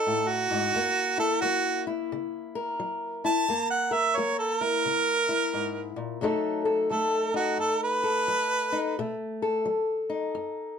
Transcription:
0.00 0.71 D#4 medium
0.00 0.30 A4 medium
0.00 0.71 A4 medium
0.07 0.48 A2 medium
0.28 1.16 F#4 medium
0.51 0.74 G#2 medium
0.75 1.37 F#2 medium
0.75 1.43 A#3 medium
1.18 1.86 E4 medium
1.18 1.41 A4 medium
1.41 2.05 F#3 medium
1.41 3.44 A#3 medium
1.41 1.83 F#4 medium
1.87 3.22 E4 medium
2.12 2.74 C#3 medium
2.55 3.45 A#4 medium
2.80 3.42 F#3 medium
3.25 3.45 E4 medium
3.25 3.69 A5 medium
3.48 4.11 F#2 medium
3.48 4.16 A#3 medium
3.70 3.95 F#5 medium
3.91 6.19 A#4 medium
3.91 4.18 E5 medium
4.16 4.80 F#3 medium
4.16 6.19 A#3 medium
4.16 4.38 C#5 medium
4.39 4.64 A4 medium
4.61 5.28 E4 medium
4.61 5.95 A#4 loud
4.86 5.48 C#3 medium
5.29 6.19 E4 medium
5.54 5.96 G#2 medium
5.96 6.21 A#2 medium
6.21 6.85 B2 medium
6.21 6.90 F#3 medium
6.21 6.91 A3 medium
6.21 7.34 D#4 medium
6.21 6.65 A4 medium
6.65 8.02 A4 medium
6.90 7.54 F#3 medium
6.90 8.97 A3 medium
6.90 7.35 A4 medium
7.34 8.71 D#4 medium
7.34 7.58 F#4 medium
7.58 8.22 F#2 medium
7.58 7.81 A4 medium
7.83 9.16 B4 loud
8.04 8.94 A4 medium
8.28 8.91 F#3 medium
8.72 8.94 D#4 medium
8.99 9.61 B2 medium
8.99 9.66 A3 medium
9.42 10.77 A4 medium
9.65 10.29 F#3 medium
10.10 10.79 D#4 soft
10.35 10.79 F#2 medium

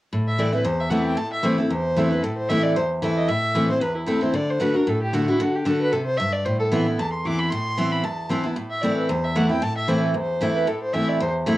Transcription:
0.13 0.63 A2 medium
0.28 0.41 E5 medium
0.38 0.53 E3 medium
0.38 0.53 A3 medium
0.38 0.53 C4 medium
0.38 0.51 E4 loud
0.38 0.53 D5 medium
0.53 0.65 C4 soft
0.53 0.64 E4 medium
0.53 0.66 B4 medium
0.64 1.15 E2 medium
0.64 0.81 C5 medium
0.80 0.91 E5 medium
0.90 1.16 E3 medium
0.90 1.17 A3 medium
0.90 1.17 C4 loud
0.90 1.17 E4 medium
0.90 1.05 F#5 medium
1.05 1.19 G5 medium
1.17 1.68 A2 medium
1.17 1.32 A5 loud
1.33 1.47 E5 medium
1.43 1.58 E3 medium
1.43 1.58 A3 medium
1.43 1.58 C4 medium
1.43 1.57 E4 loud
1.43 1.59 C5 medium
1.58 1.71 C4 soft
1.58 1.70 E4 medium
1.58 1.74 A4 soft
1.71 2.21 E2 medium
1.71 2.11 C5 loud
1.97 2.11 E3 medium
1.97 2.11 A3 medium
1.97 2.11 C4 medium
1.97 2.10 E4 medium
2.11 2.23 E4 medium
2.11 2.25 B4 medium
2.23 2.74 A2 medium
2.23 2.37 A4 medium
2.37 2.51 C5 medium
2.49 2.75 E3 medium
2.49 2.75 A3 medium
2.49 2.76 C4 medium
2.49 2.76 E4 loud
2.49 2.64 E5 loud
2.63 2.75 D5 medium
2.76 3.27 E2 medium
2.76 2.85 C5 medium
3.02 3.28 E3 medium
3.02 3.28 A3 medium
3.02 3.28 C4 medium
3.02 3.29 E4 loud
3.17 3.30 D#5 medium
3.28 3.79 A2 medium
3.28 3.70 E5 loud
3.55 3.69 E3 medium
3.55 3.69 A3 medium
3.55 3.69 C4 medium
3.55 3.67 E4 medium
3.69 3.82 C4 soft
3.69 3.81 E4 medium
3.69 3.84 C5 medium
3.81 4.32 E2 medium
3.81 3.96 B4 medium
3.97 4.09 E4 soft
4.07 4.21 E3 medium
4.07 4.22 A3 medium
4.07 4.22 C4 medium
4.07 4.20 E4 medium
4.07 4.24 A4 medium
4.21 4.34 C4 soft
4.21 4.33 E4 medium
4.21 4.37 C5 medium
4.34 4.58 D3 medium
4.34 4.52 D5 loud
4.50 4.62 C5 medium
4.60 4.74 D3 medium
4.60 4.75 A3 medium
4.60 4.75 D4 loud
4.60 4.73 F#4 medium
4.60 4.77 B4 medium
4.74 4.87 D4 soft
4.74 4.86 F#4 medium
4.74 4.90 A#4 medium
4.87 5.38 A2 medium
4.87 5.01 A4 medium
5.02 5.16 G4 medium
5.13 5.27 D3 medium
5.13 5.28 A3 medium
5.13 5.28 D4 medium
5.13 5.28 F#4 medium
5.13 5.27 F#4 medium
5.28 5.40 D4 soft
5.28 5.43 E4 medium
5.28 5.40 F#4 medium
5.40 5.64 D3 medium
5.40 5.57 F#4 medium
5.55 5.68 G4 medium
5.65 5.91 D3 medium
5.65 5.91 A3 medium
5.65 5.92 D4 medium
5.65 5.92 F#4 loud
5.65 5.80 A4 medium
5.80 5.94 B4 loud
5.92 6.18 C3 medium
5.92 6.05 A4 medium
6.06 6.19 C5 loud
6.17 6.45 G2 medium
6.17 6.34 E5 loud
6.33 6.46 D5 loud
6.45 6.96 A2 medium
6.45 6.59 C5 medium
6.59 6.67 A4 loud
6.71 6.86 E3 medium
6.71 6.86 B3 medium
6.71 6.86 C4 medium
6.71 6.85 E4 medium
6.86 6.99 B3 soft
6.86 6.98 E4 medium
6.98 7.49 E2 medium
6.98 7.12 A5 medium
7.12 7.27 C6 medium
7.25 7.50 E3 medium
7.25 7.51 B3 medium
7.25 7.50 C4 medium
7.25 7.51 E4 medium
7.25 7.40 D6 medium
7.39 7.52 B5 loud
7.50 8.02 A2 medium
7.50 7.93 C6 loud
7.78 8.03 E3 medium
7.78 8.03 B3 medium
7.78 8.03 C4 medium
7.78 8.04 E4 medium
7.92 8.05 B5 medium
8.04 8.54 E2 medium
8.04 8.45 A5 medium
8.30 8.44 E3 medium
8.30 8.45 B3 medium
8.30 8.44 C4 medium
8.30 8.43 E4 loud
8.44 8.57 B3 soft
8.44 8.56 E4 medium
8.56 9.07 A2 medium
8.71 8.84 E5 medium
8.82 9.08 E3 medium
8.82 9.09 A3 medium
8.82 9.09 C4 medium
8.82 9.09 E4 loud
8.82 8.96 D5 medium
8.97 9.10 B4 medium
9.09 9.60 E2 medium
9.09 9.26 C5 medium
9.24 9.38 E5 medium
9.35 9.50 E3 medium
9.35 9.50 A3 medium
9.35 9.50 C4 medium
9.35 9.48 E4 loud
9.35 9.50 F#5 medium
9.49 9.62 C4 soft
9.49 9.61 E4 medium
9.49 9.64 G5 medium
9.62 10.12 A2 medium
9.62 9.77 A5 loud
9.77 9.90 E5 medium
9.88 10.13 E3 medium
9.88 10.14 A3 medium
9.88 10.14 C4 medium
9.88 10.14 E4 medium
9.88 10.03 C5 medium
10.04 10.17 A4 medium
10.14 10.65 E2 medium
10.14 10.55 C5 medium
10.41 10.66 E3 medium
10.41 10.67 A3 medium
10.41 10.67 C4 loud
10.41 10.67 E4 loud
10.56 10.69 B4 medium
10.67 11.18 A2 medium
10.67 10.82 A4 medium
10.82 10.95 C5 medium
10.93 11.19 E3 medium
10.93 11.19 A3 medium
10.93 11.19 C4 medium
10.93 11.20 E4 medium
10.93 11.10 E5 medium
11.09 11.20 D5 medium
11.20 11.58 E2 medium
11.20 11.30 C5 medium
11.46 11.58 E3 medium
11.46 11.58 A3 loud
11.46 11.58 C4 loud
11.46 11.58 E4 loud

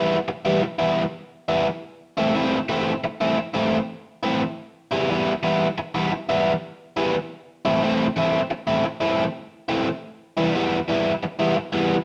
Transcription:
0.00 0.16 E3 medium
0.00 0.17 G3 medium
0.00 0.17 B3 medium
0.00 0.17 E4 medium
0.28 muted overdriven electric guitar stroke soft
0.45 0.61 E3 medium
0.45 0.62 G3 medium
0.45 0.62 B3 medium
0.45 0.62 E4 medium
0.63 muted overdriven electric guitar stroke soft
0.79 1.02 E3 medium
0.79 1.02 G3 medium
0.79 1.02 B3 medium
0.79 1.02 E4 medium
1.48 1.67 E3 medium
1.48 1.67 G3 medium
1.48 1.66 B3 medium
1.48 1.66 E4 loud
2.18 2.34 E3 medium
2.18 2.34 A3 loud
2.18 2.34 C4 loud
2.18 2.35 E4 loud
2.35 2.57 E3 medium
2.35 2.58 A3 medium
2.35 2.58 C4 medium
2.35 2.58 E4 medium
2.69 2.92 E3 medium
2.69 2.92 A3 medium
2.69 2.92 C4 medium
2.69 2.92 E4 medium
3.04 muted overdriven electric guitar stroke soft
3.21 3.37 E3 medium
3.21 3.37 A3 medium
3.21 3.37 C4 medium
3.21 3.38 E4 loud
3.38 muted overdriven electric guitar stroke soft
3.55 3.78 E3 medium
3.55 3.78 A3 medium
3.55 3.78 C4 medium
3.55 3.77 E4 medium
4.23 4.42 E3 medium
4.23 4.41 A3 medium
4.23 4.41 C4 medium
4.23 4.41 E4 medium
4.92 5.08 E3 medium
4.92 5.08 G3 medium
4.92 5.09 B3 loud
4.92 5.09 E4 loud
5.09 5.32 E3 medium
5.09 5.32 G3 medium
5.09 5.32 B3 medium
5.09 5.32 E4 medium
5.43 5.66 E3 medium
5.43 5.66 G3 medium
5.43 5.66 B3 medium
5.43 5.66 E4 medium
5.78 muted overdriven electric guitar stroke soft
5.95 6.10 E3 medium
5.95 6.11 G3 medium
5.95 6.11 B3 medium
5.95 6.11 E4 loud
6.12 muted overdriven electric guitar stroke soft
6.29 6.52 E3 medium
6.29 6.52 G3 medium
6.29 6.52 B3 medium
6.29 6.51 E4 medium
6.97 7.15 E3 medium
6.97 7.15 G3 medium
6.97 7.15 B3 medium
6.97 7.14 E4 loud
7.65 7.81 E3 medium
7.65 7.82 A3 medium
7.65 7.82 C4 medium
7.65 7.83 E4 loud
7.82 8.05 E3 medium
7.82 8.05 A3 medium
7.82 8.05 C4 medium
7.82 8.05 E4 medium
8.16 8.39 E3 medium
8.16 8.39 A3 medium
8.16 8.39 C4 medium
8.16 8.39 E4 loud
8.50 muted overdriven electric guitar stroke soft
8.67 8.83 E3 medium
8.67 8.84 A3 medium
8.67 8.84 C4 medium
8.67 8.85 E4 medium
8.84 muted overdriven electric guitar stroke soft
9.01 9.24 E3 medium
9.01 9.24 A3 medium
9.01 9.24 C4 medium
9.01 9.23 E4 loud
9.69 9.87 E3 medium
9.69 9.87 A3 medium
9.69 9.87 C4 medium
9.69 9.86 E4 medium
10.37 10.53 E3 medium
10.37 10.54 G3 medium
10.37 10.54 B3 medium
10.37 10.54 E4 medium
10.54 10.77 E3 medium
10.54 10.77 G3 medium
10.54 10.77 B3 medium
10.54 10.77 E4 medium
10.88 11.10 E3 medium
10.88 11.11 G3 medium
10.88 11.11 B3 medium
10.88 11.11 E4 medium
11.23 muted overdriven electric guitar stroke soft
11.39 11.55 E3 medium
11.39 11.55 G3 medium
11.39 11.56 B3 medium
11.39 11.56 E4 medium
11.56 muted overdriven electric guitar stroke medium
11.73 11.96 E3 medium
11.73 11.95 G3 medium
11.73 11.95 B3 medium
11.73 11.95 E4 medium

